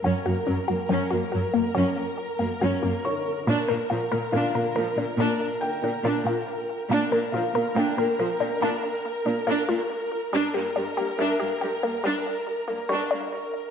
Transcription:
0.00 1.29 E6 soft
0.04 0.13 F#2 medium
0.04 0.17 F#3 medium
0.04 0.25 C#4 soft
0.04 3.43 A#4 soft
0.26 0.34 F#2 soft
0.26 0.34 A#3 soft
0.26 0.39 F#4 medium
0.47 0.56 F#2 soft
0.47 0.56 F#3 soft
0.47 0.60 C#4 soft
0.68 0.77 F#2 soft
0.68 0.77 A#3 soft
0.68 0.81 F#4 medium
0.89 0.98 F#2 medium
0.89 1.02 F#3 medium
0.89 1.10 C#4 medium
1.10 1.20 F#2 soft
1.10 1.21 A#3 soft
1.10 1.24 F#4 medium
1.32 1.42 F#2 soft
1.32 1.42 F#3 soft
1.32 1.45 F#4 medium
1.54 1.63 F#2 soft
1.54 1.67 A#3 medium
1.54 1.63 A#3 soft
1.75 1.84 F#2 medium
1.75 1.88 F#3 medium
1.75 1.96 C#4 medium
2.39 2.49 F#2 soft
2.39 2.52 A#3 soft
2.39 2.48 A#3 soft
2.61 2.70 F#2 medium
2.61 2.74 F#3 medium
2.61 2.82 C#4 medium
2.83 2.91 F#2 soft
2.83 2.92 A#3 soft
2.83 2.96 C#4 medium
3.05 5.58 C#5 soft
3.05 5.58 C#6 soft
3.47 3.56 A#2 medium
3.47 3.60 A#3 medium
3.47 3.68 D4 medium
3.47 6.87 A#4 medium
3.68 3.77 A#2 soft
3.68 3.77 A#3 soft
3.68 3.81 A#4 medium
3.90 3.98 A#2 soft
3.90 3.99 F3 soft
3.90 4.03 F4 soft
4.12 4.20 A#2 soft
4.12 4.21 A#3 soft
4.12 4.25 A#4 medium
4.32 4.41 A#2 medium
4.32 4.46 A#3 medium
4.32 4.54 D4 medium
4.32 6.86 F4 soft
4.32 6.86 F5 medium
4.54 4.62 A#2 soft
4.54 4.64 A#3 soft
4.54 4.68 A#4 medium
4.75 4.83 A#2 soft
4.75 4.86 F3 soft
4.75 4.89 A#4 medium
4.97 5.05 A#2 soft
4.97 5.06 A#3 soft
4.97 5.10 D4 soft
5.17 5.25 A#2 medium
5.17 5.32 A#3 medium
5.17 5.39 D4 medium
5.61 7.75 G5 medium
5.82 5.90 A#2 soft
5.82 5.93 A#3 soft
5.82 5.96 D4 soft
6.04 6.12 A#2 medium
6.04 6.18 A#3 medium
6.04 6.25 D4 medium
6.24 6.32 A#2 soft
6.24 6.35 A#3 soft
6.24 6.39 F4 medium
6.89 6.97 A#2 medium
6.89 7.04 A#3 medium
6.89 7.11 D4 medium
6.89 10.29 A#4 medium
7.11 7.19 A#2 soft
7.11 7.21 A#3 soft
7.11 7.25 A#4 medium
7.32 7.40 A#2 medium
7.32 7.43 F3 soft
7.32 7.47 F4 medium
7.32 9.86 F5 soft
7.54 7.62 A#2 soft
7.54 7.64 A#3 soft
7.54 7.68 A#4 medium
7.76 7.84 A#2 medium
7.76 7.89 A#3 medium
7.76 7.97 D4 medium
7.76 10.29 G5 medium
7.97 8.05 A#2 soft
7.97 8.06 A#3 soft
7.97 8.11 A#4 medium
8.18 8.26 A#2 soft
8.18 8.27 F3 medium
8.18 8.32 A#4 medium
8.40 8.48 A#2 soft
8.40 8.49 A#3 soft
8.40 8.53 D4 soft
8.61 8.69 A#2 medium
8.61 8.75 A#3 medium
8.61 8.82 D4 medium
9.26 9.34 A#2 soft
9.26 9.34 A#3 medium
9.26 9.39 D4 medium
9.47 9.55 A#2 medium
9.47 9.60 A#3 medium
9.47 9.68 D4 medium
9.69 9.77 A#2 medium
9.69 9.78 A#3 soft
9.69 9.82 F4 medium
10.33 10.41 G2 medium
10.33 10.46 G3 medium
10.33 10.53 D4 medium
10.33 13.71 A#4 medium
10.54 10.62 G2 soft
10.54 10.63 A#3 soft
10.54 10.67 G4 medium
10.76 10.84 G2 medium
10.76 10.84 G3 soft
10.76 10.89 D4 medium
10.97 11.06 G2 soft
10.97 11.06 A#3 soft
10.97 11.10 G4 medium
11.18 11.27 G2 medium
11.18 11.32 G3 medium
11.18 11.39 D4 medium
11.18 13.71 E5 soft
11.40 11.49 G2 soft
11.40 11.50 A#3 soft
11.40 11.53 G4 medium
11.61 11.70 G2 soft
11.61 11.71 G3 medium
11.61 11.74 G4 medium
11.83 11.92 G2 soft
11.83 11.96 A#3 medium
11.83 11.93 A#3 soft
12.04 12.13 G2 medium
12.04 12.17 G3 medium
12.04 12.25 D4 medium
12.68 12.77 G2 soft
12.68 12.81 A#3 medium
12.68 12.78 A#3 soft
12.89 12.99 G2 medium
12.89 13.02 G3 medium
12.89 13.11 D4 medium
12.89 13.71 C#6 medium
13.11 13.21 G2 soft
13.11 13.21 A#3 soft
13.11 13.24 D4 medium

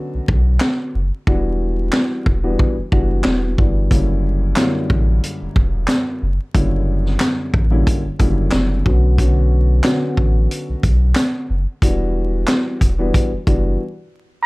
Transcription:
0.00 0.96 D3 medium
0.00 0.96 F#3 medium
0.00 0.96 B3 medium
0.00 0.96 C#4 medium
0.00 0.96 F#4 loud
0.14 0.20 B1 medium
0.28 0.58 B1 medium
0.28 kick loud
0.60 snare loud
0.60 clap medium
0.95 1.11 F#1 medium
1.27 1.89 E1 loud
1.27 2.34 E3 medium
1.27 2.34 G3 medium
1.27 2.34 B3 medium
1.27 2.34 D4 medium
1.27 2.35 F#4 loud
1.27 kick loud
1.92 snare loud
1.92 clap medium
2.26 2.56 E1 medium
2.26 kick medium
2.43 2.74 E3 medium
2.43 2.74 G3 medium
2.43 2.74 B3 medium
2.43 2.74 D4 medium
2.43 2.74 F#4 medium
2.59 kick loud
2.78 2.84 F#1 soft
2.92 3.22 F#1 medium
2.92 3.53 E3 medium
2.92 3.53 G3 medium
2.92 3.53 B3 medium
2.92 3.53 D4 medium
2.92 3.53 F#4 loud
2.92 kick medium
3.24 3.55 E1 loud
3.24 snare loud
3.24 clap medium
3.58 3.88 G1 loud
3.58 3.89 E3 medium
3.58 3.89 G3 medium
3.58 3.89 B3 medium
3.58 3.89 D4 medium
3.58 3.89 F#4 medium
3.58 kick medium
3.91 4.53 F#1 loud
3.91 4.52 F#2 medium
3.91 4.52 D3 medium
3.91 4.52 G3 medium
3.91 4.52 A#3 medium
3.91 4.52 C#4 medium
3.91 4.52 E4 loud
3.91 kick loud
3.91 closed hi-hat loud
4.56 6.23 F#2 medium
4.56 6.24 D3 medium
4.56 6.24 G3 medium
4.56 6.24 A#3 medium
4.56 6.24 C#4 medium
4.56 6.24 E4 medium
4.56 snare loud
4.56 clap medium
4.56 closed hi-hat medium
4.90 5.20 A1 loud
4.90 kick medium
5.24 closed hi-hat medium
5.42 5.47 E1 soft
5.56 5.86 E1 medium
5.56 kick medium
5.87 snare loud
5.87 clap medium
5.87 closed hi-hat medium
6.22 6.38 F#1 medium
6.55 7.17 F#1 loud
6.55 7.61 F#2 medium
6.55 7.62 D3 medium
6.55 7.62 G3 medium
6.55 7.62 A#3 medium
6.55 7.62 C#4 medium
6.55 7.62 E4 loud
6.55 kick loud
6.55 closed hi-hat loud
7.06 snare soft
7.20 snare loud
7.20 clap medium
7.20 closed hi-hat medium
7.54 7.83 A1 medium
7.54 kick medium
7.71 8.01 F#2 medium
7.71 8.01 D3 medium
7.71 8.01 G3 medium
7.71 8.02 A#3 medium
7.71 8.02 C#4 medium
7.71 8.02 E4 loud
7.87 kick loud
7.87 closed hi-hat medium
8.05 8.11 F#1 medium
8.19 8.49 F#1 medium
8.19 8.81 F#2 medium
8.19 8.81 D3 medium
8.19 8.81 G3 medium
8.19 8.81 A#3 medium
8.19 8.81 C#4 medium
8.19 8.81 E4 loud
8.19 kick medium
8.19 closed hi-hat medium
8.51 8.82 F#1 medium
8.51 snare loud
8.51 clap medium
8.51 closed hi-hat medium
8.85 9.81 B1 medium
8.85 9.16 D3 medium
8.85 9.16 F#3 medium
8.85 9.16 B3 medium
8.85 9.16 C#4 medium
8.85 9.16 F#4 medium
8.85 kick medium
9.18 9.80 D3 loud
9.18 9.80 F#3 medium
9.18 9.80 B3 medium
9.18 9.80 C#4 medium
9.18 9.80 F#4 medium
9.18 kick loud
9.18 closed hi-hat loud
9.83 11.51 D3 medium
9.83 11.51 F#3 medium
9.83 11.51 B3 medium
9.83 11.51 C#4 medium
9.83 11.51 F#4 loud
9.83 snare loud
9.83 clap medium
9.83 closed hi-hat medium
10.17 10.47 A1 medium
10.17 kick medium
10.51 closed hi-hat medium
10.69 10.75 B1 soft
10.83 11.13 B1 medium
10.83 kick loud
10.83 closed hi-hat medium
11.15 snare loud
11.15 clap medium
11.15 closed hi-hat medium
11.50 11.66 F#1 medium
11.82 12.44 E1 loud
11.82 12.89 E3 medium
11.82 12.89 G3 medium
11.82 12.89 B3 medium
11.82 12.89 D4 medium
11.82 12.89 F#4 loud
11.82 kick loud
11.82 closed hi-hat loud
12.47 snare loud
12.47 clap medium
12.47 closed hi-hat medium
12.81 13.11 E1 medium
12.81 kick medium
12.81 closed hi-hat medium
12.99 13.29 E3 medium
12.99 13.29 G3 medium
12.99 13.29 B3 loud
12.99 13.29 D4 medium
12.99 13.29 F#4 medium
13.14 kick loud
13.14 closed hi-hat medium
13.33 13.38 F#1 soft
13.47 13.77 F#1 medium
13.47 13.80 E3 medium
13.47 13.80 G3 medium
13.47 13.80 B3 medium
13.47 13.80 D4 medium
13.47 13.80 F#4 loud
13.47 kick medium
13.47 closed hi-hat medium

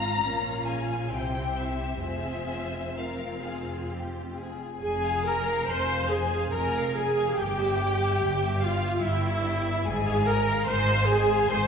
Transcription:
0.00 0.21 G#1 medium
0.00 0.21 G#2 medium
0.00 0.21 C4 medium
0.00 0.22 F4 medium
0.00 0.23 F5 medium
0.00 0.62 A#5 medium
0.22 1.10 A#1 medium
0.22 1.10 A#2 soft
0.22 1.10 C#4 soft
0.22 1.08 F4 medium
0.22 0.67 A#4 soft
0.22 1.10 F5 soft
0.66 1.10 G#4 soft
0.66 1.10 G#5 medium
1.09 2.02 C2 medium
1.09 2.03 C3 soft
1.09 2.02 C4 soft
1.09 2.03 E4 soft
1.09 2.02 G4 soft
1.09 2.01 C5 soft
1.09 1.56 G5 medium
1.57 2.02 E5 medium
2.02 4.56 F1 soft
2.02 4.57 F2 soft
2.02 2.95 C4 soft
2.02 2.95 F4 soft
2.02 2.97 G#4 soft
2.02 2.95 C5 soft
2.02 2.95 E5 medium
2.97 4.58 C4 medium
2.97 4.58 F4 medium
2.97 3.40 A#4 medium
2.97 3.90 F5 soft
3.43 3.90 G#4 soft
3.91 4.37 G4 soft
4.37 4.82 G#4 soft
4.81 5.58 F1 medium
4.81 5.59 F2 medium
4.81 5.23 G#4 medium
4.81 5.23 G#5 medium
4.81 5.03 G#5 medium
5.05 5.26 F5 medium
5.26 5.69 A#4 medium
5.26 5.48 G#5 soft
5.26 5.68 A#5 medium
5.49 5.70 F5 soft
5.68 6.43 F1 medium
5.68 6.43 F2 medium
5.68 6.11 C5 medium
5.68 5.89 G#5 medium
5.68 6.11 C6 medium
5.91 6.12 F5 medium
6.11 6.53 G#4 medium
6.11 6.53 G#5 medium
6.11 6.33 G#5 medium
6.34 6.54 F5 soft
6.51 7.27 F1 medium
6.51 7.27 F2 medium
6.51 6.95 A#4 medium
6.51 6.73 G#5 medium
6.51 6.94 A#5 medium
6.76 6.96 F5 medium
6.94 7.38 G#4 medium
6.94 7.36 G#5 medium
6.98 7.18 G#5 medium
7.18 7.38 F5 medium
7.35 8.11 G1 medium
7.35 8.11 G2 medium
7.35 8.63 G4 loud
7.35 8.59 G5 medium
7.41 7.59 G5 medium
7.59 7.79 E5 medium
7.81 8.01 G5 medium
8.02 8.22 E5 medium
8.21 8.94 G1 medium
8.21 8.94 G2 medium
8.21 8.42 G5 medium
8.43 8.63 E5 medium
8.61 9.04 F4 medium
8.61 9.03 F5 medium
8.61 8.84 G5 medium
8.83 9.04 E5 soft
9.03 9.77 G1 medium
9.03 9.77 G2 medium
9.03 9.88 E4 medium
9.03 9.87 E5 medium
9.03 9.23 G5 medium
9.24 9.45 E5 medium
9.45 9.66 G5 medium
9.66 9.87 E5 medium
9.85 10.60 G#1 medium
9.85 10.60 G#2 medium
9.85 10.29 G#4 medium
9.85 10.06 G#5 medium
9.85 10.28 G#5 medium
10.08 10.29 F5 medium
10.28 10.70 A#4 loud
10.28 10.49 G#5 medium
10.28 10.69 A#5 medium
10.50 10.70 F5 medium
10.68 11.40 G#1 medium
10.68 11.40 G#2 medium
10.68 11.09 C5 loud
10.68 10.88 G#5 medium
10.68 11.09 C6 medium
10.89 11.10 F5 medium
11.07 11.50 G#4 loud
11.07 11.48 G#5 medium
11.07 11.29 G#5 medium
11.32 11.51 F5 medium
11.48 11.67 G#1 medium
11.48 11.67 G#2 medium
11.48 11.67 C5 medium
11.48 11.67 G#5 medium
11.48 11.67 C6 medium

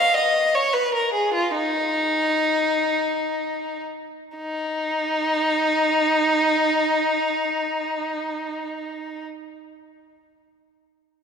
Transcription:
0.00 0.17 F5 medium
0.16 0.53 D#5 medium
0.55 0.73 C#5 medium
0.73 0.93 B4 medium
0.94 1.13 A#4 medium
1.13 1.33 G#4 medium
1.34 1.54 F4 medium
1.54 3.82 D#4 medium
4.37 9.24 D#4 medium

